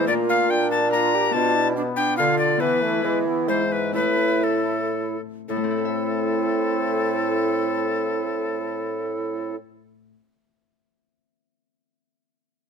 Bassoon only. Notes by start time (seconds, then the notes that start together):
Already playing: E3
0.09 A#2
1.34 B2
2.19 D3
2.61 E3
3.04 E3
3.49 G#2
3.95 A2
5.49 A2